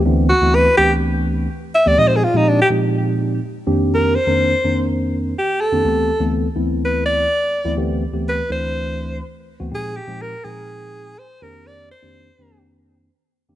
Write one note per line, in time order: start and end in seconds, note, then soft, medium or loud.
0.05 0.31 D2 medium
0.05 0.31 E3 medium
0.05 0.31 A3 medium
0.05 0.31 B3 medium
0.05 0.31 C4 medium
0.05 0.31 D4 medium
0.29 0.56 F#4 medium
0.42 0.67 D2 medium
0.42 0.67 E3 medium
0.42 0.67 A3 medium
0.42 0.67 B3 medium
0.42 0.67 C4 medium
0.42 0.67 E4 medium
0.55 0.77 B4 medium
0.77 1.46 D2 medium
0.77 1.46 E3 medium
0.77 1.46 A3 medium
0.77 1.46 B3 medium
0.77 1.46 C4 medium
0.77 1.46 D4 medium
0.77 0.92 G4 medium
1.75 1.89 E5 medium
1.85 1.94 D2 medium
1.85 1.94 E3 medium
1.85 1.95 A3 medium
1.85 1.95 B3 medium
1.85 1.95 C4 medium
1.85 1.95 G4 medium
1.85 2.00 D5 medium
1.97 2.23 A#2 medium
1.97 2.24 F3 medium
1.97 2.23 G#3 medium
1.97 2.23 C4 medium
1.97 2.24 D#4 medium
1.97 2.24 G4 medium
1.97 2.09 D#5 medium
2.08 2.18 C5 medium
2.16 2.25 G#4 medium
2.24 2.39 F4 medium
2.34 2.60 A#2 medium
2.34 2.60 F3 medium
2.34 2.60 G#3 medium
2.34 2.60 C4 medium
2.34 2.60 D#4 medium
2.34 2.50 D#4 medium
2.34 2.60 G4 medium
2.49 2.60 D4 medium
2.62 2.68 G4 medium
2.70 3.39 A#2 medium
2.70 3.39 F3 medium
2.70 3.39 G#3 medium
2.70 3.39 C4 medium
2.70 3.39 D#4 medium
2.70 3.39 G4 medium
3.67 4.15 F2 medium
3.67 4.15 D#3 medium
3.67 4.15 A#3 medium
3.67 4.15 C4 medium
3.67 4.15 D4 medium
3.67 4.16 G4 medium
3.94 4.17 A#4 medium
4.15 4.88 C5 loud
4.27 4.53 F2 medium
4.27 4.53 D#3 medium
4.27 4.53 A#3 medium
4.27 4.53 C4 medium
4.27 4.53 D4 medium
4.27 4.53 A#4 medium
4.64 5.32 F2 medium
4.64 5.33 D#3 medium
4.64 5.33 A#3 medium
4.64 5.32 C4 medium
4.64 5.33 D4 medium
4.64 5.33 A#4 medium
5.39 5.62 G4 medium
5.61 6.33 A4 medium
5.72 5.81 F2 medium
5.72 5.81 D#3 medium
5.72 5.81 A#3 medium
5.72 5.81 C4 medium
5.72 5.81 D4 medium
5.72 5.81 G4 medium
5.84 6.10 D2 medium
5.84 6.10 E3 medium
5.84 6.10 A3 medium
5.84 6.10 B3 medium
5.84 6.10 C4 medium
5.84 6.10 G4 medium
6.20 6.46 D2 medium
6.20 6.46 E3 medium
6.20 6.46 A3 medium
6.20 6.46 B3 medium
6.20 6.46 C4 medium
6.20 6.46 A4 loud
6.56 7.25 D2 medium
6.56 7.25 E3 medium
6.56 7.25 A3 medium
6.56 7.25 B3 medium
6.56 7.25 C4 medium
6.56 7.25 E4 medium
6.85 7.05 B4 medium
7.06 7.75 D5 loud
7.65 7.74 D2 medium
7.65 7.74 E3 medium
7.65 7.74 A3 medium
7.65 7.74 B3 medium
7.65 7.74 C4 medium
7.65 7.74 E4 loud
7.77 8.03 D2 medium
7.77 8.04 E3 medium
7.77 8.03 A3 medium
7.77 8.04 B3 medium
7.77 8.04 C4 medium
7.77 8.04 G4 medium
8.13 8.40 D2 medium
8.13 8.40 E3 medium
8.13 8.40 A3 medium
8.13 8.40 B3 medium
8.13 8.40 C4 medium
8.13 8.40 G4 medium
8.29 8.50 B4 medium
8.49 9.19 D2 medium
8.49 9.19 E3 medium
8.49 9.19 A3 medium
8.49 9.19 C4 medium
8.49 9.19 D4 medium
8.49 9.19 E4 medium
8.49 9.20 C5 medium
9.59 9.68 D2 medium
9.59 9.69 E3 medium
9.59 9.69 A3 medium
9.59 9.69 B3 medium
9.59 9.69 C4 medium
9.59 9.69 F#4 medium
9.71 9.98 A#2 medium
9.71 9.98 F3 medium
9.71 9.98 G#3 medium
9.71 9.98 C4 medium
9.71 9.98 D#4 medium
9.71 9.98 G4 medium
9.71 9.98 G#4 medium
9.96 10.23 G4 medium
10.07 10.34 A#2 medium
10.07 10.34 F3 medium
10.07 10.34 G#3 medium
10.07 10.34 C4 medium
10.07 10.34 D#4 medium
10.07 10.34 G4 medium
10.22 10.46 A#4 loud
10.44 11.13 A#2 medium
10.44 11.13 F3 medium
10.44 11.13 G#3 medium
10.44 11.13 C4 medium
10.44 11.13 D#4 medium
10.44 11.20 G#4 medium
10.44 11.13 G5 medium
11.19 11.44 C5 loud
11.42 11.91 F2 medium
11.42 11.91 D#3 medium
11.42 11.91 A#3 medium
11.42 11.91 C4 medium
11.42 11.91 D4 medium
11.42 11.91 G4 medium
11.42 11.68 A#4 medium
11.67 11.91 D5 loud
11.91 12.60 C5 loud
12.02 12.28 F2 medium
12.02 12.28 D#3 medium
12.02 12.29 A#3 medium
12.02 12.28 C4 medium
12.02 12.29 D4 medium
12.02 12.29 G4 medium
12.39 13.08 F2 medium
12.39 13.08 D#3 medium
12.39 13.08 A#3 medium
12.39 13.08 C4 medium
12.39 13.08 D4 medium
12.39 13.08 G4 medium
13.49 13.55 F2 loud
13.49 13.55 D#3 medium
13.49 13.55 A#3 medium
13.49 13.55 C4 medium
13.49 13.55 D4 medium
13.49 13.55 G4 loud